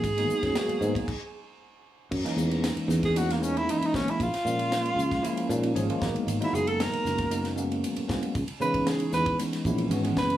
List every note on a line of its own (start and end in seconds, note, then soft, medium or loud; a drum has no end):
0.00 0.26 G#1 medium
0.00 1.56 G#4 medium
0.00 kick loud
0.04 hi-hat pedal medium
0.04 ride medium
0.17 0.53 F#3 medium
0.17 0.53 G#3 medium
0.17 0.53 A#3 medium
0.17 0.53 B3 medium
0.17 0.53 D#4 medium
0.17 snare soft
0.17 ride medium
0.30 muted fretless electric bass stroke soft
0.30 hi-hat pedal medium
0.43 0.54 F#2 medium
0.43 kick medium
0.43 snare soft
0.43 ride medium
0.55 0.80 F#3 medium
0.55 0.80 G#3 medium
0.55 0.80 A#3 medium
0.55 0.80 B3 medium
0.55 0.80 F#4 medium
0.55 snare loud
0.55 hi-hat pedal medium
0.55 ride medium
0.68 muted fretless electric bass stroke soft
0.68 ride medium
0.81 0.93 G#2 medium
0.81 1.08 F#3 medium
0.81 1.08 G#3 medium
0.81 1.08 A#3 medium
0.81 1.08 B3 medium
0.81 1.08 D#4 medium
0.81 hi-hat pedal medium
0.95 kick medium
0.95 ride medium
1.08 kick loud
1.08 crash medium
2.11 2.23 F#2 medium
2.11 kick medium
2.11 crash loud
2.24 3.09 E3 medium
2.24 3.09 G#3 medium
2.24 3.08 A#3 medium
2.24 3.09 C#4 medium
2.24 3.09 D#4 loud
2.24 snare soft
2.24 ride medium
2.37 2.71 E2 medium
2.37 hi-hat pedal medium
2.51 ride medium
2.64 snare loud
2.64 hi-hat pedal medium
2.64 ride medium
2.76 muted fretless electric bass stroke soft
2.76 ride medium
2.88 3.67 E2 medium
2.88 snare soft
2.88 hi-hat pedal medium
3.03 3.18 G#4 medium
3.03 kick medium
3.03 snare soft
3.03 ride medium
3.16 3.40 E3 medium
3.16 3.40 G#3 medium
3.16 3.40 A#3 medium
3.16 3.40 C#4 medium
3.16 3.40 D#4 medium
3.16 3.34 F#4 medium
3.16 hi-hat pedal medium
3.16 ride medium
3.30 3.44 A#3 medium
3.30 snare soft
3.30 ride medium
3.42 3.90 E3 medium
3.42 3.90 G#3 medium
3.42 3.90 A#3 medium
3.42 3.90 C#4 medium
3.42 3.59 C#4 medium
3.42 3.90 D#4 medium
3.42 hi-hat pedal medium
3.57 3.72 E4 medium
3.57 ride soft
3.69 3.80 D#4 medium
3.69 hi-hat pedal medium
3.69 ride medium
3.79 3.88 E4 medium
3.79 muted fretless electric bass stroke soft
3.79 ride medium
3.86 3.96 D#4 medium
3.93 4.05 B1 medium
3.93 4.19 E3 medium
3.93 4.20 G#3 medium
3.93 4.19 A#3 medium
3.93 4.20 C#4 medium
3.93 4.11 C#4 medium
3.93 4.20 E4 medium
3.93 kick medium
3.93 snare medium
3.93 hi-hat pedal medium
4.08 4.24 E4 medium
4.08 ride medium
4.20 4.31 A#1 medium
4.20 5.77 F4 medium
4.20 kick loud
4.20 hi-hat pedal medium
4.20 ride medium
4.33 muted fretless electric bass stroke soft
4.33 snare soft
4.33 ride medium
4.45 4.90 A#2 medium
4.45 5.18 F3 medium
4.45 5.17 G#3 medium
4.45 5.18 A#3 medium
4.45 5.18 C#4 medium
4.45 5.18 F4 medium
4.45 hi-hat pedal medium
4.59 ride medium
4.72 snare loud
4.72 hi-hat pedal medium
4.72 ride medium
4.85 ride medium
4.96 5.19 C#2 medium
4.96 hi-hat pedal medium
5.11 kick medium
5.11 snare soft
5.11 ride medium
5.22 5.47 F3 medium
5.22 5.47 G#3 medium
5.22 5.47 A#3 medium
5.22 5.47 C#4 medium
5.22 5.47 E4 loud
5.22 hi-hat pedal medium
5.22 ride medium
5.37 ride medium
5.49 5.72 A#2 medium
5.49 5.73 F3 medium
5.49 5.73 G#3 medium
5.49 5.74 A#3 medium
5.49 5.73 C#4 medium
5.49 5.73 D#4 medium
5.49 hi-hat pedal medium
5.63 ride medium
5.75 5.87 G#1 medium
5.75 5.88 F3 medium
5.75 5.88 G#3 medium
5.75 5.88 A#3 medium
5.75 5.88 C#4 medium
5.75 5.88 G#4 medium
5.75 6.00 G#5 medium
5.75 hi-hat pedal medium
5.75 ride medium
5.89 6.02 F3 medium
5.89 6.00 G#3 medium
5.89 6.00 A#3 medium
5.89 6.02 C#4 medium
5.89 6.02 F4 medium
5.89 muted fretless electric bass stroke soft
5.89 ride medium
6.02 6.13 G#1 medium
6.02 6.38 F#3 medium
6.02 6.38 G#3 medium
6.02 6.38 A#3 medium
6.02 6.38 B3 medium
6.02 6.38 D#4 medium
6.02 6.26 D#5 medium
6.02 kick medium
6.02 snare medium
6.02 hi-hat pedal medium
6.15 muted fretless electric bass stroke soft
6.15 ride medium
6.27 6.38 G#1 medium
6.27 hi-hat pedal medium
6.27 ride medium
6.41 7.24 F#3 medium
6.41 7.25 G#3 medium
6.41 7.25 A#3 medium
6.41 7.25 B3 medium
6.41 7.24 D#4 medium
6.41 6.56 E4 medium
6.41 ride medium
6.53 6.87 F#1 medium
6.53 6.70 G#4 medium
6.53 hi-hat pedal medium
6.67 6.83 A4 medium
6.67 ride medium
6.80 7.58 A#4 medium
6.80 snare loud
6.80 hi-hat pedal medium
6.80 ride medium
6.93 muted fretless electric bass stroke soft
6.93 ride medium
7.05 7.83 F#1 medium
7.05 snare soft
7.05 hi-hat pedal medium
7.18 kick medium
7.18 snare soft
7.18 ride medium
7.30 7.55 F#3 medium
7.30 7.55 G#3 medium
7.30 7.55 A#3 medium
7.30 7.55 B3 medium
7.30 7.55 D#4 medium
7.30 hi-hat pedal medium
7.30 ride medium
7.45 snare soft
7.45 ride medium
7.56 8.04 F#3 medium
7.56 8.05 G#3 medium
7.56 8.05 A#3 medium
7.56 8.05 B3 medium
7.56 8.05 C#4 medium
7.56 hi-hat pedal medium
7.72 ride soft
7.84 hi-hat pedal medium
7.84 ride medium
7.96 muted fretless electric bass stroke soft
7.96 ride medium
8.08 8.21 C2 medium
8.08 8.35 F#3 medium
8.08 8.35 G#3 medium
8.08 8.35 A#3 medium
8.08 8.35 B3 medium
8.08 8.35 C#4 medium
8.08 kick medium
8.08 snare loud
8.08 hi-hat pedal medium
8.23 ride medium
8.35 8.47 C#2 loud
8.35 kick loud
8.35 hi-hat pedal medium
8.35 ride medium
8.48 ride medium
8.60 9.05 C#3 medium
8.60 9.33 E3 medium
8.60 9.33 G#3 medium
8.60 9.32 B3 medium
8.60 9.33 C#4 medium
8.60 9.33 D#4 medium
8.60 8.91 B4 medium
8.60 hi-hat pedal medium
8.74 kick medium
8.74 ride medium
8.87 9.14 G#4 medium
8.87 snare loud
8.87 hi-hat pedal medium
8.87 ride medium
9.00 ride medium
9.12 9.35 E2 medium
9.12 9.38 B4 medium
9.12 snare soft
9.12 hi-hat pedal medium
9.26 kick medium
9.26 ride medium
9.38 9.63 E3 medium
9.38 9.63 G#3 medium
9.38 9.63 B3 medium
9.38 9.63 C#4 medium
9.38 9.63 D#4 medium
9.38 hi-hat pedal medium
9.38 ride medium
9.53 snare soft
9.53 ride medium
9.65 9.88 A#1 medium
9.65 9.90 E3 medium
9.65 9.89 G#3 medium
9.65 9.89 B3 medium
9.65 9.89 C#4 medium
9.65 9.90 E4 medium
9.65 kick medium
9.65 hi-hat pedal medium
9.78 ride soft
9.90 10.14 G#1 medium
9.90 10.02 E3 medium
9.90 10.03 G#3 medium
9.90 10.03 B3 medium
9.90 10.03 C#4 medium
9.90 10.03 F#4 medium
9.90 hi-hat pedal medium
9.90 ride medium
10.04 10.37 E3 medium
10.04 10.37 G#3 medium
10.04 10.37 B3 medium
10.04 10.37 C#4 medium
10.04 10.37 E4 medium
10.04 ride medium
10.16 10.37 F#1 medium
10.16 10.37 B4 medium
10.16 kick medium
10.16 snare loud
10.16 hi-hat pedal medium
10.30 ride medium